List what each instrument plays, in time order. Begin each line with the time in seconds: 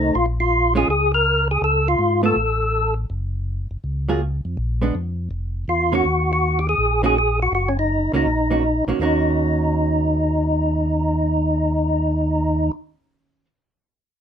Already playing: tonewheel organ C2 D#4, hollow-body jazz guitar D#3 A3 C4
0.15 tonewheel organ A#1 F4
0.40 tonewheel organ F4
0.75 hollow-body jazz guitar G#3 C#4 F4, tonewheel organ G#4
0.88 tonewheel organ C#2 G#4
1.14 tonewheel organ A#4
1.51 tonewheel organ G#4
1.62 tonewheel organ C#2 A4
1.88 tonewheel organ F4
1.99 tonewheel organ G#2
2.23 hollow-body jazz guitar A3 B3 F4, tonewheel organ A4
2.36 tonewheel organ A1
3.10 tonewheel organ F#1
3.71 tonewheel organ F#1
3.84 tonewheel organ C#2
4.09 hollow-body jazz guitar F#3 A#3 F4 G#4
4.45 tonewheel organ F2
4.57 tonewheel organ A#1
4.82 hollow-body jazz guitar G#3 B3 D4
4.95 tonewheel organ F2
5.31 tonewheel organ F1
5.68 tonewheel organ E2 F4
5.92 hollow-body jazz guitar D#3 A#3 C#4 F#4, tonewheel organ F#4
6.05 tonewheel organ D#2
6.33 tonewheel organ F#4
6.59 tonewheel organ G4
6.69 tonewheel organ G#4
6.78 tonewheel organ A#1
7.03 hollow-body jazz guitar D#3 A#3 C#4 F#4, tonewheel organ G#4
7.18 tonewheel organ G#4
7.43 tonewheel organ F#4
7.52 tonewheel organ F#1 F#4
7.68 tonewheel organ C#4
7.79 tonewheel organ D#4
8.13 tonewheel organ C#2 D#4, hollow-body jazz guitar D#3 A#3 C#4 F#4
8.26 tonewheel organ A#1
8.51 hollow-body jazz guitar D#3 A#3 C#4 F#4
8.87 tonewheel organ A#1, hollow-body jazz guitar D#3 A#3 C#4 F#4
8.99 tonewheel organ D#2 D#4, hollow-body jazz guitar D#3 A#3 C#4 F#4